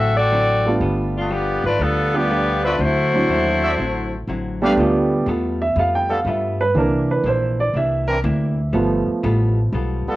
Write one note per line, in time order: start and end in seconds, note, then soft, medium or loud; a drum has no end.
0.00 0.76 A1 medium
0.00 0.17 D3 soft
0.00 0.17 F#3 medium
0.00 0.16 C4 medium
0.00 0.18 C4 medium
0.00 0.18 E4 medium
0.00 0.15 F#4 medium
0.00 0.16 A4 medium
0.00 0.16 E5 medium
0.16 0.78 C4 medium
0.16 0.77 F#4 medium
0.16 0.77 A4 medium
0.16 0.77 D5 loud
0.31 0.67 D3 medium
0.31 0.67 F#3 medium
0.31 0.67 C4 medium
0.31 0.67 E4 medium
0.65 1.27 G3 medium
0.65 1.27 A3 medium
0.65 1.28 B3 medium
0.65 1.28 D4 medium
0.65 1.28 F4 medium
0.80 1.60 G1 medium
0.80 1.16 G3 medium
0.80 1.16 B3 medium
0.80 1.17 F4 medium
0.80 1.17 A4 medium
1.17 1.30 A3 medium
1.17 1.30 B3 medium
1.17 1.30 D4 medium
1.17 1.30 F4 medium
1.30 1.65 F3 medium
1.30 1.66 G3 medium
1.30 1.66 B3 medium
1.30 1.65 B3 medium
1.30 1.65 D4 medium
1.30 1.66 F4 medium
1.30 1.65 G4 medium
1.30 1.67 A4 medium
1.64 1.79 G#1 medium
1.64 1.80 A3 medium
1.64 1.79 D4 medium
1.64 1.79 F4 medium
1.64 1.80 B4 medium
1.79 2.75 D2 loud
1.79 2.14 F3 medium
1.79 2.15 G3 medium
1.79 2.16 B3 soft
1.79 2.14 B3 medium
1.79 2.14 D4 medium
1.79 2.16 F4 medium
1.79 2.14 A4 medium
1.79 2.16 A4 medium
2.14 2.64 F3 medium
2.14 2.76 G3 medium
2.14 2.76 A3 medium
2.14 2.64 B3 medium
2.14 2.77 B3 medium
2.14 2.63 D4 medium
2.14 2.77 D4 medium
2.14 2.77 F4 medium
2.14 2.64 G4 loud
2.30 2.65 G3 medium
2.30 2.66 B3 medium
2.30 2.66 F4 medium
2.30 2.66 A4 medium
2.64 2.78 A3 medium
2.64 2.78 D4 medium
2.64 2.78 F4 medium
2.64 2.74 F#4 medium
2.64 2.78 B4 medium
2.64 2.75 C5 medium
2.64 2.75 D5 medium
2.64 2.75 E5 medium
2.79 3.25 D2 medium
2.79 3.15 D3 medium
2.79 3.15 F#3 medium
2.79 4.28 A3 medium
2.79 3.15 C4 medium
2.79 3.16 E4 medium
2.79 4.29 E4 loud
2.79 4.29 F#4 medium
2.79 4.28 C5 loud
3.13 3.75 F#3 medium
3.13 3.75 A3 soft
3.13 3.75 C4 medium
3.13 3.76 D4 medium
3.13 3.76 E4 medium
3.29 3.75 D#2 medium
3.29 3.65 D3 medium
3.29 3.65 F#3 medium
3.29 3.65 C4 medium
3.29 3.65 E4 medium
3.63 3.74 F#4 medium
3.63 3.74 C5 medium
3.63 3.74 D5 medium
3.63 3.74 E5 medium
3.78 4.24 A1 medium
3.78 4.14 D3 medium
3.78 4.14 F#3 medium
3.78 4.15 C4 medium
3.78 4.15 E4 medium
4.27 4.74 A1 medium
4.27 4.64 D3 medium
4.27 4.64 F#3 medium
4.27 4.64 C4 medium
4.27 4.64 E4 medium
4.62 5.24 G3 medium
4.62 4.78 A3 medium
4.62 4.79 B3 medium
4.62 5.24 D4 medium
4.62 4.72 G4 medium
4.62 5.24 G4 medium
4.62 4.72 A4 medium
4.62 4.72 B4 medium
4.62 4.73 F5 medium
4.77 5.25 D2 medium
4.77 5.13 G3 medium
4.77 6.73 A3 soft
4.77 5.14 B3 medium
4.77 6.73 B3 medium
4.77 6.72 F4 soft
4.77 5.14 F4 medium
4.77 5.14 A4 medium
5.26 5.74 E2 medium
5.26 5.63 G3 medium
5.26 5.63 B3 medium
5.26 5.63 F4 medium
5.26 5.63 A4 medium
5.62 5.76 E5 medium
5.76 6.24 F2 medium
5.76 6.12 G3 medium
5.76 6.13 B3 soft
5.76 6.13 F4 medium
5.76 6.13 A4 medium
5.76 5.94 F5 medium
5.95 6.10 G5 medium
6.08 6.20 G3 medium
6.08 6.20 B3 medium
6.08 6.20 F4 medium
6.08 6.20 A4 medium
6.08 6.27 F5 medium
6.25 6.73 G2 medium
6.25 6.61 G3 medium
6.25 6.62 B3 medium
6.25 6.62 F4 medium
6.25 6.62 A4 medium
6.25 6.60 E5 medium
6.61 6.76 B4 medium
6.75 7.23 C2 medium
6.75 7.11 C3 medium
6.75 8.69 E3 soft
6.75 8.70 A#3 soft
6.75 7.12 A#3 soft
6.75 8.70 D4 medium
6.75 7.12 D4 medium
6.75 7.12 E4 medium
6.75 7.10 A#4 medium
7.11 7.26 B4 medium
7.24 7.72 A#1 medium
7.24 7.61 C3 medium
7.24 7.61 A#3 medium
7.24 7.61 D4 medium
7.24 7.61 E4 medium
7.28 7.60 C5 medium
7.60 7.75 D5 medium
7.74 8.22 C2 medium
7.74 8.10 C3 medium
7.74 8.11 A#3 medium
7.74 8.11 D4 medium
7.74 8.11 E4 medium
7.74 8.71 E5 medium
8.07 8.19 E3 loud
8.07 8.19 C4 loud
8.07 8.18 D4 loud
8.07 8.19 A#4 loud
8.24 8.72 D2 loud
8.24 8.60 C3 medium
8.24 8.60 A#3 medium
8.24 8.60 D4 medium
8.24 8.60 E4 medium
8.73 9.05 G1 medium
8.73 10.16 F3 medium
8.73 9.09 G3 medium
8.73 10.16 A3 soft
8.73 9.09 B3 medium
8.73 10.16 B3 medium
8.73 9.10 F4 medium
8.73 9.10 A4 medium
9.08 muted upright bass stroke soft
9.23 9.71 A1 loud
9.23 9.59 G3 medium
9.23 9.59 B3 medium
9.23 9.59 F4 medium
9.23 9.59 A4 medium
9.72 10.04 B1 medium
9.72 10.08 G3 medium
9.72 10.09 B3 medium
9.72 10.09 F4 medium
9.72 10.09 A4 medium
10.07 10.16 G3 medium
10.07 10.16 B3 medium
10.07 10.16 F4 medium
10.07 10.16 A4 loud
10.07 muted upright bass stroke soft